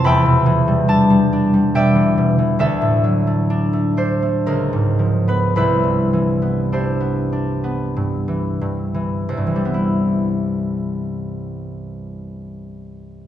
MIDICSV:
0, 0, Header, 1, 2, 480
1, 0, Start_track
1, 0, Key_signature, 0, "major"
1, 0, Tempo, 852273
1, 26, Time_signature, 3, 2, 24, 8
1, 1467, Tempo, 903614
1, 1947, Tempo, 967742
1, 2427, Tempo, 1081081
1, 2907, Tempo, 1162791
1, 3387, Tempo, 1237113
1, 3867, Tempo, 1339286
1, 5772, End_track
2, 0, Start_track
2, 0, Title_t, "Harp"
2, 0, Program_c, 0, 46
2, 0, Note_on_c, 0, 81, 79
2, 24, Note_on_c, 0, 40, 60
2, 26, Note_on_c, 0, 83, 89
2, 33, Note_on_c, 0, 76, 68
2, 37, Note_on_c, 0, 79, 70
2, 113, Note_off_c, 0, 81, 0
2, 145, Note_on_c, 0, 47, 48
2, 258, Note_on_c, 0, 52, 51
2, 381, Note_on_c, 0, 55, 46
2, 497, Note_on_c, 0, 62, 52
2, 500, Note_on_c, 0, 81, 84
2, 613, Note_off_c, 0, 55, 0
2, 620, Note_on_c, 0, 55, 47
2, 741, Note_off_c, 0, 62, 0
2, 747, Note_on_c, 0, 62, 49
2, 858, Note_off_c, 0, 55, 0
2, 865, Note_on_c, 0, 55, 48
2, 978, Note_off_c, 0, 47, 0
2, 978, Note_off_c, 0, 79, 0
2, 981, Note_off_c, 0, 76, 0
2, 984, Note_on_c, 0, 47, 46
2, 986, Note_on_c, 0, 79, 79
2, 988, Note_on_c, 0, 76, 56
2, 992, Note_on_c, 0, 74, 60
2, 1091, Note_off_c, 0, 52, 0
2, 1098, Note_on_c, 0, 52, 44
2, 1219, Note_off_c, 0, 47, 0
2, 1226, Note_on_c, 0, 47, 45
2, 1319, Note_off_c, 0, 81, 0
2, 1337, Note_off_c, 0, 52, 0
2, 1343, Note_on_c, 0, 52, 44
2, 1457, Note_off_c, 0, 76, 0
2, 1459, Note_on_c, 0, 38, 57
2, 1463, Note_on_c, 0, 76, 78
2, 1467, Note_on_c, 0, 69, 64
2, 1486, Note_off_c, 0, 40, 0
2, 1486, Note_off_c, 0, 52, 0
2, 1487, Note_off_c, 0, 83, 0
2, 1488, Note_off_c, 0, 47, 0
2, 1488, Note_off_c, 0, 55, 0
2, 1488, Note_off_c, 0, 79, 0
2, 1579, Note_on_c, 0, 45, 43
2, 1697, Note_on_c, 0, 54, 45
2, 1821, Note_on_c, 0, 57, 40
2, 1936, Note_off_c, 0, 62, 0
2, 1942, Note_on_c, 0, 62, 45
2, 2052, Note_off_c, 0, 57, 0
2, 2058, Note_on_c, 0, 57, 39
2, 2171, Note_off_c, 0, 62, 0
2, 2176, Note_on_c, 0, 62, 43
2, 2179, Note_on_c, 0, 72, 61
2, 2296, Note_off_c, 0, 57, 0
2, 2302, Note_on_c, 0, 57, 37
2, 2421, Note_on_c, 0, 70, 54
2, 2423, Note_on_c, 0, 37, 53
2, 2442, Note_off_c, 0, 38, 0
2, 2442, Note_off_c, 0, 45, 0
2, 2442, Note_off_c, 0, 54, 0
2, 2443, Note_off_c, 0, 76, 0
2, 2444, Note_off_c, 0, 62, 0
2, 2445, Note_off_c, 0, 57, 0
2, 2445, Note_off_c, 0, 69, 0
2, 2449, Note_off_c, 0, 74, 0
2, 2539, Note_on_c, 0, 44, 38
2, 2589, Note_off_c, 0, 72, 0
2, 2655, Note_on_c, 0, 53, 38
2, 2782, Note_on_c, 0, 59, 38
2, 2786, Note_on_c, 0, 71, 58
2, 2905, Note_off_c, 0, 71, 0
2, 2907, Note_on_c, 0, 36, 48
2, 2911, Note_on_c, 0, 71, 69
2, 2913, Note_on_c, 0, 64, 50
2, 2914, Note_on_c, 0, 67, 49
2, 2923, Note_off_c, 0, 53, 0
2, 2924, Note_off_c, 0, 44, 0
2, 2925, Note_off_c, 0, 37, 0
2, 3022, Note_on_c, 0, 43, 35
2, 3035, Note_off_c, 0, 70, 0
2, 3144, Note_on_c, 0, 52, 35
2, 3258, Note_off_c, 0, 59, 0
2, 3263, Note_on_c, 0, 59, 35
2, 3388, Note_off_c, 0, 64, 0
2, 3388, Note_off_c, 0, 67, 0
2, 3388, Note_on_c, 0, 62, 39
2, 3391, Note_on_c, 0, 64, 34
2, 3391, Note_on_c, 0, 72, 46
2, 3394, Note_on_c, 0, 67, 34
2, 3493, Note_off_c, 0, 59, 0
2, 3497, Note_on_c, 0, 59, 34
2, 3617, Note_off_c, 0, 62, 0
2, 3622, Note_on_c, 0, 62, 34
2, 3738, Note_off_c, 0, 59, 0
2, 3743, Note_on_c, 0, 59, 34
2, 3865, Note_off_c, 0, 43, 0
2, 3870, Note_on_c, 0, 43, 36
2, 3978, Note_off_c, 0, 52, 0
2, 3982, Note_on_c, 0, 52, 35
2, 4098, Note_off_c, 0, 43, 0
2, 4102, Note_on_c, 0, 43, 36
2, 4216, Note_off_c, 0, 52, 0
2, 4221, Note_on_c, 0, 52, 35
2, 4339, Note_off_c, 0, 36, 0
2, 4344, Note_on_c, 0, 36, 45
2, 4361, Note_off_c, 0, 52, 0
2, 4363, Note_off_c, 0, 43, 0
2, 4363, Note_off_c, 0, 62, 0
2, 4374, Note_on_c, 0, 43, 39
2, 4408, Note_off_c, 0, 71, 0
2, 4408, Note_on_c, 0, 52, 38
2, 4440, Note_on_c, 0, 55, 41
2, 4470, Note_off_c, 0, 59, 0
2, 4474, Note_on_c, 0, 59, 39
2, 4502, Note_off_c, 0, 64, 0
2, 4506, Note_on_c, 0, 64, 38
2, 4825, Note_off_c, 0, 72, 0
2, 4828, Note_off_c, 0, 67, 0
2, 5747, Note_off_c, 0, 36, 0
2, 5772, Note_off_c, 0, 43, 0
2, 5772, Note_off_c, 0, 52, 0
2, 5772, Note_off_c, 0, 55, 0
2, 5772, Note_off_c, 0, 59, 0
2, 5772, Note_off_c, 0, 64, 0
2, 5772, End_track
0, 0, End_of_file